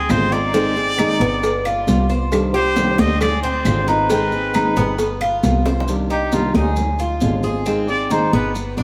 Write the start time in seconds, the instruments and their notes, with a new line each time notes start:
Already playing: cuban tres C4, muted trumpet G#4
0.08 double bass G#1, nylon-string guitar D3 G#3 C4 F4, muted trumpet C5, cowbell, high conga, claves, maracas
0.31 nylon-string guitar G#3 C4 F4, cuban tres D#4, muted trumpet D5, cowbell, maracas
0.53 nylon-string guitar D#3 G#3 C4 D#4 G#4, cuban tres C4, cowbell, maracas
0.76 nylon-string guitar C4 D#4 G#4, high conga, maracas
0.98 nylon-string guitar D#3 G#3 C4 D#4 G#4, cuban tres D#4, cowbell, high conga, claves, maracas
1.20 double bass G1, cuban tres B3, nylon-string guitar G#4, cowbell, high conga, maracas
1.43 muted nylon-string guitar stroke, cowbell, high conga, maracas
1.65 cuban tres F4, high conga, claves, maracas
1.87 double bass C2, nylon-string guitar G3 B3 F4, cowbell, high conga, maracas
2.09 nylon-string guitar B3 F4, cuban tres C5, maracas
2.32 nylon-string guitar C3 D#3 G3 D4 G4, cowbell, high conga, claves, maracas
2.54 nylon-string guitar G3 D4 G4, cuban tres G4, muted trumpet C5, high conga, maracas
2.76 nylon-string guitar C3 D#3 G3 D4 G4, cowbell, high conga, maracas
2.98 double bass D2, nylon-string guitar G3 D4 G4, cuban tres C4, muted trumpet D#5, high conga, maracas
3.21 cuban tres G#4, muted trumpet D5, muted nylon-string guitar stroke, cowbell, high conga, low conga, claves, maracas
3.42 cuban tres C4, muted trumpet C5, high conga, maracas
3.65 double bass G#1, nylon-string guitar D3 G#3 C4 F4, cowbell, high conga, claves, maracas
3.87 nylon-string guitar G#3 C4 F4, cuban tres D#4, muted trumpet B4, cowbell, maracas
4.10 nylon-string guitar D#3 G#3 C4 D#4 G#4, cuban tres C4, cowbell, high conga, maracas
4.32 nylon-string guitar C4 D#4 G#4, high conga, maracas
4.54 nylon-string guitar D#3 G#3 C4 D#4 G#4, cuban tres D#4, cowbell, high conga, claves, maracas
4.76 double bass G1, cuban tres B3, nylon-string guitar C4 D#4 G#4, cowbell, high conga, maracas
4.98 muted nylon-string guitar stroke, cowbell, high conga, maracas
5.21 cuban tres F4, high conga, claves, maracas
5.43 double bass C2, nylon-string guitar G3 B3 F4, cowbell, high conga, maracas
5.65 nylon-string guitar B3 F4, cuban tres C5, high bongo, maracas
5.80 low bongo
5.88 nylon-string guitar C3 D#3 G3 D4 G4, high conga, maracas
6.09 nylon-string guitar G3 D4 G4, cuban tres D#4, muted trumpet G4, high conga, maracas
6.32 nylon-string guitar C3 D#3 G3 D4 G4, muted trumpet F4, high conga, maracas
6.54 double bass D2, nylon-string guitar G3 D4 G4, muted trumpet D#4, cuban tres G#4, high conga, maracas
6.76 muted nylon-string guitar stroke, high conga, low conga, maracas
6.99 cuban tres F4, high conga, maracas
7.21 double bass G#1, nylon-string guitar D3 G#3 C4 F4, high conga, maracas
7.43 nylon-string guitar G#3 C4 F4, cuban tres G#4, high conga, maracas
7.66 nylon-string guitar D#3 G#3 C4 D#4 G#4, cuban tres C4, maracas
7.88 nylon-string guitar C4 D#4 G#4, muted trumpet D5, high conga, maracas
8.10 nylon-string guitar D#3 G#3 C4 D#4 G#4, cuban tres D#4, muted trumpet C5, high conga, maracas
8.33 double bass G1, cuban tres B3, nylon-string guitar C4 D#4 G#4, muted trumpet B4, maracas
8.55 muted nylon-string guitar stroke, high conga, maracas
8.77 double bass B1, cuban tres D4, high conga, maracas